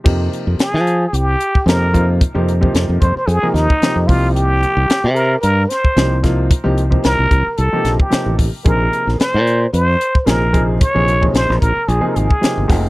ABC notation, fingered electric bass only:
X:1
M:4/4
L:1/16
Q:"Swing 16ths" 1/4=112
K:Fm
V:1 name="Fingered electric bass" clef=bass
F,,2 z F,, z F,3 C,,2 z2 F,,4- | F,, F,,3 F,, F,, F,, z F,, z E,, z2 F,, C,,2- | C,,3 C,, z C,3 G,,2 z2 C,,4- | C,, C,,3 C,, C,, C,, z C,, z B,,, z2 =A,,,2 z |
B,,,2 z B,,, z B,,3 F,,2 z2 B,,,4- | B,,, B,,,3 B,,, B,,, B,,, z B,,, z A,,, z2 G,,, F,,,2 |]